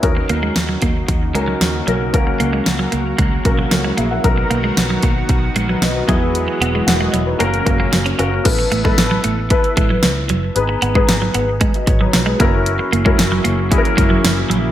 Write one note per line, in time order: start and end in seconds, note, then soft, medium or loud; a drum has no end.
0.00 0.22 D#2 medium
0.00 4.21 C#3 medium
0.00 6.05 F#3 medium
0.00 4.21 A#3 medium
0.00 0.91 C#4 medium
0.00 0.91 D#4 medium
0.00 2.12 D#4 medium
0.00 0.91 F#4 medium
0.00 4.20 F#4 medium
0.00 0.91 A#4 medium
0.00 0.15 B4 medium
0.00 kick loud
0.00 closed hi-hat medium
0.17 muted clean electric guitar stroke soft
0.29 0.49 D#2 medium
0.29 0.40 A#3 medium
0.29 closed hi-hat medium
0.43 0.53 G#3 medium
0.56 0.75 D#2 medium
0.56 muted clean electric guitar stroke soft
0.56 snare loud
0.56 closed hi-hat medium
0.69 0.79 F#3 medium
0.82 1.01 D#2 medium
0.82 0.92 A#3 medium
0.82 kick medium
0.82 closed hi-hat medium
1.08 1.35 D#2 medium
1.08 muted clean electric guitar stroke soft
1.08 kick medium
1.08 closed hi-hat medium
1.34 1.54 C#2 medium
1.34 1.45 G#3 medium
1.34 1.79 C#4 medium
1.34 1.79 D#4 medium
1.34 1.79 F#4 medium
1.34 1.79 A#4 medium
1.34 closed hi-hat medium
1.48 1.58 F#3 medium
1.61 1.80 D#2 medium
1.61 snare loud
1.61 closed hi-hat medium
1.87 2.14 B1 medium
1.87 1.97 F#3 medium
1.87 2.09 C#4 medium
1.87 2.10 D#4 medium
1.87 2.10 F#4 medium
1.87 2.10 A#4 medium
1.87 closed hi-hat medium
2.13 2.33 C#2 medium
2.13 3.01 A#3 medium
2.13 3.02 C#4 medium
2.13 3.02 F#4 medium
2.13 4.22 A#4 medium
2.13 3.02 A#4 medium
2.13 kick loud
2.13 closed hi-hat medium
2.27 muted clean electric guitar stroke soft
2.40 2.59 C#2 medium
2.40 2.50 A#3 medium
2.40 closed hi-hat medium
2.53 2.63 G#3 medium
2.66 2.86 C#2 medium
2.66 muted clean electric guitar stroke soft
2.66 snare loud
2.66 closed hi-hat medium
2.79 2.90 F#3 medium
2.92 3.12 C#2 medium
2.92 3.02 A#3 medium
2.92 closed hi-hat medium
3.18 3.38 C#2 medium
3.18 3.29 G#3 medium
3.18 kick medium
3.18 closed hi-hat medium
3.45 3.64 B1 medium
3.45 3.89 A#3 medium
3.45 3.71 C#4 medium
3.45 3.72 F#4 medium
3.45 3.70 A#4 medium
3.45 muted clean electric guitar stroke soft
3.45 kick medium
3.45 closed hi-hat medium
3.59 3.69 F#3 medium
3.71 3.91 C#2 medium
3.71 3.85 C#4 medium
3.71 3.84 A#4 medium
3.71 muted clean electric guitar stroke soft
3.71 snare loud
3.71 closed hi-hat medium
3.84 3.95 G#3 medium
3.84 3.98 E4 medium
3.84 3.97 C#5 medium
3.97 4.17 A#1 medium
3.97 4.08 A#3 medium
3.97 4.11 G#4 medium
3.97 4.10 E5 medium
3.97 closed hi-hat medium
4.11 4.23 A#4 medium
4.11 4.36 F#5 medium
4.24 4.43 B1 medium
4.24 6.07 D#3 medium
4.24 5.12 B3 medium
4.24 7.37 B3 medium
4.24 5.12 D#4 medium
4.24 8.41 F#4 medium
4.24 5.12 F#4 medium
4.24 6.07 A#4 medium
4.24 5.12 A#4 medium
4.24 kick loud
4.24 closed hi-hat medium
4.38 muted clean electric guitar stroke soft
4.50 4.70 B1 medium
4.50 4.61 A#3 medium
4.50 closed hi-hat medium
4.64 4.74 G#3 medium
4.77 4.96 B1 medium
4.77 muted clean electric guitar stroke soft
4.77 snare loud
4.77 closed hi-hat medium
4.90 5.00 F#3 medium
5.03 5.22 B1 medium
5.03 5.13 A#3 medium
5.03 kick medium
5.03 closed hi-hat medium
5.29 5.48 B1 loud
5.29 muted clean electric guitar stroke soft
5.29 kick medium
5.29 closed hi-hat medium
5.56 5.75 A#1 medium
5.56 5.66 G#3 medium
5.56 closed hi-hat medium
5.69 5.79 F#3 medium
5.69 5.82 D#4 soft
5.69 5.82 B4 medium
5.82 6.01 B1 loud
5.82 5.95 F#4 medium
5.82 5.95 D#5 medium
5.82 snare loud
5.82 closed hi-hat medium
5.95 6.21 D#4 medium
5.95 6.20 B4 medium
6.07 6.47 E2 medium
6.07 7.39 E3 medium
6.07 7.39 F#3 medium
6.07 6.19 F#3 medium
6.07 7.39 G#3 medium
6.07 6.96 B3 medium
6.07 6.87 E4 medium
6.07 6.87 F#4 medium
6.07 6.88 G#4 medium
6.07 kick medium
6.07 closed hi-hat medium
6.35 closed hi-hat medium
6.48 muted clean electric guitar stroke soft
6.61 6.80 E1 medium
6.61 6.72 B3 medium
6.61 closed hi-hat medium
6.75 6.85 G#3 medium
6.87 7.06 E1 loud
6.87 7.00 A#4 soft
6.87 7.00 F#5 medium
6.87 muted clean electric guitar stroke soft
6.87 snare loud
6.87 closed hi-hat medium
7.00 7.11 G#3 medium
7.00 7.13 F#4 medium
7.00 7.13 D#5 medium
7.13 7.33 E1 medium
7.13 7.24 F#3 medium
7.13 7.26 E4 medium
7.13 7.26 C#5 medium
7.13 closed hi-hat medium
7.26 7.52 D#4 medium
7.26 7.51 B4 medium
7.38 7.59 F#1 medium
7.38 8.45 A#2 medium
7.38 8.45 C#3 medium
7.38 8.44 F#3 medium
7.38 7.61 A#3 medium
7.38 7.50 A#3 medium
7.38 7.62 C#4 medium
7.38 8.45 C#4 medium
7.38 7.62 F#4 medium
7.38 7.62 A#4 loud
7.38 closed hi-hat medium
7.54 closed hi-hat soft
7.65 7.86 F#1 medium
7.65 8.10 A#3 medium
7.65 8.10 C#4 medium
7.65 8.10 F#4 medium
7.65 8.11 A#4 medium
7.65 muted clean electric guitar stroke soft
7.65 kick medium
7.65 closed hi-hat medium
7.80 7.90 A#3 medium
7.92 8.12 F#1 medium
7.92 muted clean electric guitar stroke soft
7.92 snare loud
7.92 closed hi-hat medium
8.06 8.16 C#4 medium
8.06 closed hi-hat soft
8.18 8.38 F#1 loud
8.18 8.41 A#3 medium
8.18 8.41 C#4 medium
8.18 8.29 C#4 medium
8.18 8.41 F#4 medium
8.18 8.41 A#4 medium
8.18 closed hi-hat medium
8.44 8.64 A1 loud
8.44 8.78 B3 medium
8.44 8.78 E4 medium
8.44 8.78 A4 medium
8.44 8.78 B4 medium
8.44 kick loud
8.44 closed hi-hat medium
8.44 crash medium
8.59 muted clean electric guitar stroke soft
8.72 8.91 A1 loud
8.72 8.82 A3 medium
8.72 closed hi-hat medium
8.83 8.95 G#3 medium
8.83 9.39 B3 medium
8.83 9.39 E4 medium
8.83 9.39 A4 medium
8.83 9.40 B4 medium
8.83 kick medium
8.98 9.18 A1 loud
8.98 muted clean electric guitar stroke soft
8.98 snare loud
8.98 closed hi-hat medium
9.11 9.21 F#3 medium
9.24 9.53 A1 medium
9.24 9.34 A3 medium
9.24 closed hi-hat medium
9.50 10.38 B3 medium
9.50 10.38 E4 medium
9.50 10.39 A4 medium
9.50 10.39 B4 medium
9.50 muted clean electric guitar stroke soft
9.50 kick medium
9.50 closed hi-hat medium
9.64 closed hi-hat soft
9.77 9.96 A1 loud
9.77 9.87 G#3 medium
9.77 kick loud
9.77 closed hi-hat medium
9.90 10.00 F#3 medium
10.03 10.32 C#2 medium
10.03 snare loud
10.03 closed hi-hat loud
10.29 10.49 F#1 medium
10.29 10.40 F#3 medium
10.29 closed hi-hat medium
10.55 10.75 G#1 loud
10.55 10.89 B3 medium
10.55 10.89 D#4 medium
10.55 10.89 G#4 medium
10.55 10.89 B4 medium
10.55 closed hi-hat medium
10.69 muted clean electric guitar stroke soft
10.82 11.01 G#1 loud
10.82 10.92 B3 medium
10.82 closed hi-hat medium
10.95 11.06 G#3 medium
10.95 11.50 B3 medium
10.95 11.50 D#4 medium
10.95 11.50 G#4 medium
10.95 11.51 B4 medium
10.95 kick medium
11.09 11.28 G#1 loud
11.09 muted clean electric guitar stroke soft
11.09 snare loud
11.09 closed hi-hat loud
11.22 11.32 F#3 medium
11.34 11.63 G#1 loud
11.34 11.45 B3 medium
11.34 closed hi-hat medium
11.61 11.71 G#3 medium
11.61 kick medium
11.61 closed hi-hat medium
11.74 11.88 F#4 medium
11.74 11.87 D#5 medium
11.74 closed hi-hat soft
11.87 12.06 G#1 loud
11.87 12.00 C#5 medium
11.87 muted clean electric guitar stroke soft
11.87 kick loud
11.87 closed hi-hat medium
12.01 12.11 F#3 medium
12.01 12.26 D#4 medium
12.01 12.26 B4 medium
12.13 12.33 B1 medium
12.13 muted clean electric guitar stroke soft
12.13 snare loud
12.13 closed hi-hat medium
12.26 12.37 G#3 medium
12.26 12.53 B3 medium
12.26 12.52 G#4 medium
12.40 12.78 F#1 loud
12.40 12.50 A#3 medium
12.40 12.95 C#4 medium
12.40 12.95 E4 medium
12.40 12.95 F#4 medium
12.40 12.96 A#4 medium
12.40 kick loud
12.40 closed hi-hat medium
12.66 14.72 C#3 medium
12.66 14.72 E3 medium
12.66 14.72 F#3 medium
12.66 14.72 A#3 medium
12.66 14.72 E4 medium
12.66 closed hi-hat medium
12.79 muted clean electric guitar stroke soft
12.93 13.12 F#1 medium
12.93 13.03 A#3 medium
12.93 closed hi-hat medium
13.05 13.16 G#3 medium
13.05 13.61 C#4 medium
13.05 13.61 E4 medium
13.05 13.61 F#4 medium
13.05 13.61 A#4 medium
13.05 kick medium
13.19 13.38 F#1 loud
13.19 muted clean electric guitar stroke soft
13.19 snare loud
13.19 closed hi-hat medium
13.32 13.42 F#3 medium
13.44 13.74 F#1 medium
13.44 13.55 A#3 medium
13.44 closed hi-hat medium
13.71 14.59 C#4 medium
13.71 14.59 E4 medium
13.71 14.60 F#4 medium
13.71 13.78 G#4 medium
13.71 muted clean electric guitar stroke soft
13.71 kick medium
13.71 closed hi-hat medium
13.78 14.63 A#4 medium
13.85 closed hi-hat soft
13.97 14.17 F#1 medium
13.97 14.08 G#3 medium
13.97 kick loud
13.97 closed hi-hat medium
14.10 14.21 F#3 medium
14.24 14.43 F#1 medium
14.24 snare loud
14.24 closed hi-hat loud
14.50 14.69 A#1 medium
14.50 14.60 F#3 medium
14.50 closed hi-hat medium